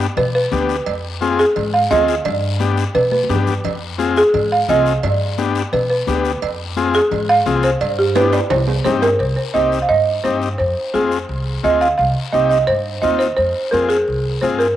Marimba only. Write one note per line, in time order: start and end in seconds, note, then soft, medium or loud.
0.00 0.20 D5 medium
0.17 0.25 B4 medium
0.35 0.67 B4 medium
1.39 1.75 G#4 medium
1.74 1.81 F5 medium
1.91 2.23 D#5 medium
2.26 2.91 D5 medium
2.95 3.03 B4 medium
3.12 3.44 B4 medium
4.17 4.49 G#4 loud
4.52 4.68 F5 medium
4.69 5.01 D#5 medium
5.04 5.75 D5 medium
5.73 5.81 B4 medium
5.90 6.22 B4 medium
6.95 7.27 G#4 loud
7.29 7.62 F5 loud
7.64 7.82 C5 medium
7.81 7.89 D5 medium
7.99 8.06 G4 medium
8.16 8.23 B4 medium
8.33 8.41 D5 medium
8.50 8.83 C5 medium
8.85 8.93 C5 medium
9.02 9.20 A#4 medium
9.19 9.35 C5 medium
9.36 9.44 C5 medium
9.54 9.80 D#5 medium
9.82 9.89 F5 medium
9.89 10.25 D#5 loud
10.24 10.57 C5 medium
10.58 10.91 C5 medium
10.94 11.66 G#4 medium
11.64 11.72 D#5 medium
11.81 11.89 F5 medium
11.98 12.31 F5 medium
12.32 12.41 D#5 medium
12.49 12.57 D#5 medium
12.67 13.00 C5 loud
13.02 13.19 D#5 medium
13.19 13.35 C5 medium
13.36 13.73 C5 medium
13.71 13.90 A#4 medium
13.89 14.43 G#4 medium
14.41 14.60 C5 medium
14.59 14.75 A#4 medium